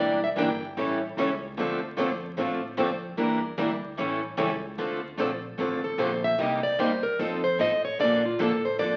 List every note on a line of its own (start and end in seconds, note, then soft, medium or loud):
0.00 0.35 E1 medium
0.00 0.17 E3 medium
0.00 0.18 G3 medium
0.00 0.17 A#3 medium
0.00 0.18 D4 medium
0.00 0.18 E4 medium
0.00 0.18 G4 medium
0.00 0.18 A#4 medium
0.00 0.20 D5 medium
0.24 0.29 E5 medium
0.36 0.75 G1 medium
0.36 0.48 E3 medium
0.36 0.49 G3 medium
0.36 0.47 A#3 medium
0.36 0.49 D4 loud
0.36 0.49 E4 loud
0.36 0.48 G4 medium
0.36 0.49 A#4 loud
0.36 0.98 G5 medium
0.77 1.16 A1 medium
0.77 0.98 E3 medium
0.77 0.98 G3 medium
0.77 0.98 C#4 medium
0.77 0.98 E4 medium
0.77 0.98 A4 medium
1.17 1.56 C#2 medium
1.17 1.28 E3 medium
1.17 1.29 G3 medium
1.17 1.29 C#4 medium
1.17 1.29 E4 medium
1.17 1.29 A4 medium
1.57 1.96 D2 medium
1.57 1.79 D3 medium
1.57 1.79 F3 medium
1.57 1.78 A3 medium
1.57 1.79 C4 medium
1.57 1.79 D4 medium
1.57 1.78 F4 medium
1.57 1.79 A4 medium
1.97 2.37 F2 medium
1.97 2.09 D3 medium
1.97 2.09 F3 medium
1.97 2.08 A3 medium
1.97 2.09 C4 medium
1.97 2.09 D4 medium
1.97 2.08 F4 loud
1.97 2.09 A4 medium
2.37 2.77 A2 medium
2.37 2.58 D3 medium
2.37 2.58 F3 medium
2.37 2.59 A3 medium
2.37 2.58 C4 medium
2.37 2.58 D4 medium
2.37 2.59 F4 medium
2.37 2.59 A4 medium
2.77 3.17 F2 medium
2.77 2.89 D3 medium
2.77 2.89 F3 medium
2.77 2.88 A3 medium
2.77 2.89 C4 medium
2.77 2.89 D4 medium
2.77 2.89 F4 loud
2.77 2.89 A4 loud
3.17 3.57 E2 medium
3.17 3.38 E3 medium
3.17 3.39 G3 medium
3.17 3.38 A#3 medium
3.17 3.39 D4 medium
3.17 3.39 E4 medium
3.17 3.39 G4 medium
3.17 3.39 A#4 medium
3.58 3.97 D2 medium
3.58 3.69 E3 medium
3.58 3.69 G3 loud
3.58 3.69 A#3 medium
3.58 3.69 D4 medium
3.58 3.69 E4 loud
3.58 3.69 G4 medium
3.58 3.69 A#4 loud
3.98 4.37 A1 medium
3.98 4.19 E3 medium
3.98 4.19 G3 medium
3.98 4.19 C#4 medium
3.98 4.19 E4 medium
3.98 4.20 A4 medium
4.37 4.77 C#2 medium
4.37 4.49 E3 medium
4.37 4.49 G3 medium
4.37 4.49 C#4 medium
4.37 4.49 E4 medium
4.37 4.49 A4 medium
4.78 5.17 D2 medium
4.78 4.99 D3 medium
4.78 4.99 F3 medium
4.78 4.99 A3 medium
4.78 4.99 C4 medium
4.78 5.00 D4 medium
4.78 4.99 F4 medium
4.78 4.99 A4 medium
5.17 5.57 A#1 medium
5.17 5.30 D3 medium
5.17 5.30 F3 medium
5.17 5.29 A3 medium
5.17 5.30 C4 medium
5.17 5.30 D4 medium
5.17 5.29 F4 medium
5.17 5.30 A4 loud
5.58 5.97 A1 medium
5.58 5.79 D3 medium
5.58 5.79 F3 medium
5.58 5.79 A3 medium
5.58 5.80 C4 medium
5.58 5.80 D4 medium
5.58 5.79 F4 medium
5.58 5.80 A4 medium
5.84 5.99 A4 medium
5.98 6.37 A#1 loud
5.98 6.10 D3 medium
5.98 6.10 F3 medium
5.98 6.09 A3 loud
5.98 6.10 C4 medium
5.98 6.10 D4 medium
5.98 6.10 F4 medium
5.98 6.10 A4 medium
5.98 6.23 C5 medium
6.24 6.41 E5 loud
6.38 6.78 C2 medium
6.38 6.59 C3 medium
6.38 6.60 G3 medium
6.38 6.60 A#3 medium
6.38 6.60 D#4 medium
6.38 6.60 G4 medium
6.38 6.63 D#5 medium
6.63 6.80 D5 medium
6.79 7.18 D#2 medium
6.79 6.90 C3 medium
6.79 6.90 G3 medium
6.79 6.90 A#3 medium
6.79 6.90 D#4 medium
6.79 6.90 G4 medium
6.79 7.03 C5 medium
7.03 7.19 A#4 medium
7.19 7.58 F2 medium
7.19 7.40 F3 medium
7.19 7.40 C4 medium
7.19 7.40 D#4 medium
7.19 7.43 A4 medium
7.19 7.40 A4 medium
7.44 7.59 C5 medium
7.59 7.98 A2 medium
7.59 7.70 F3 medium
7.59 7.71 C4 medium
7.59 7.71 D#4 medium
7.59 7.71 A4 medium
7.59 7.84 D#5 loud
7.85 7.99 C#5 medium
7.99 8.38 A#2 medium
7.99 8.20 D3 medium
7.99 8.20 F3 medium
7.99 8.20 A#3 medium
7.99 8.20 D4 medium
7.99 8.20 A4 medium
7.99 8.24 D5 medium
8.25 8.40 F4 medium
8.39 8.78 A2 medium
8.39 8.50 D3 medium
8.39 8.50 F3 loud
8.39 8.50 A#3 medium
8.39 8.50 D4 medium
8.39 8.51 A4 loud
8.39 8.64 A4 medium
8.65 8.79 C5 medium
8.79 8.97 F2 medium
8.79 8.97 D3 medium
8.79 8.97 F3 medium
8.79 8.97 A#3 medium
8.79 8.97 D4 medium
8.79 8.97 A4 medium
8.79 8.97 D5 loud